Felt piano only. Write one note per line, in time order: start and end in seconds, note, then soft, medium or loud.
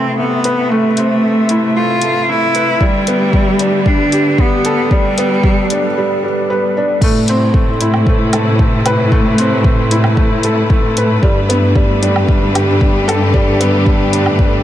0.00 0.19 A3 medium
0.00 0.98 C4 medium
0.00 1.50 E4 medium
0.00 0.17 A4 medium
0.19 0.33 A3 medium
0.45 0.70 B4 medium
0.71 0.86 A3 medium
0.98 1.22 C4 medium
1.23 1.38 A3 medium
1.50 1.65 E4 medium
1.77 2.01 A3 medium
2.03 2.27 A4 medium
2.30 2.44 A3 medium
2.55 2.70 B4 medium
2.82 2.96 G3 loud
3.08 3.33 B3 medium
3.35 3.49 G3 medium
3.61 3.85 D4 medium
3.87 4.11 G3 medium
4.13 4.38 G4 medium
4.39 4.54 G3 medium
4.66 4.90 A4 loud
4.92 5.07 G3 loud
5.18 5.43 B3 loud
5.45 5.60 G3 medium
5.72 5.86 D4 medium
5.98 6.22 G3 medium
6.24 6.49 G3 medium
6.50 6.75 B4 medium
6.77 7.01 D4 medium
7.03 7.18 A3 loud
7.29 7.54 C4 loud
7.55 7.70 A3 medium
7.81 8.06 E4 medium
8.08 8.33 A3 medium
8.34 8.59 A4 medium
8.60 8.75 A3 medium
8.86 9.11 B4 loud
9.12 9.27 A3 loud
9.39 9.64 C4 loud
9.66 9.80 A3 medium
9.91 10.06 E4 medium
10.17 10.43 A3 medium
10.44 10.69 A4 medium
10.71 10.86 A3 medium
10.98 11.12 B4 medium
11.23 11.38 G3 loud
11.49 11.74 B3 loud
11.76 11.91 G3 medium
12.02 12.27 D4 medium
12.28 12.53 G3 medium
12.55 12.80 G4 medium
12.81 12.96 G3 medium
13.08 13.33 A4 loud
13.34 13.49 G3 loud
13.60 13.85 B3 loud
13.87 14.02 G3 medium
14.13 14.28 D4 medium
14.40 14.63 G3 medium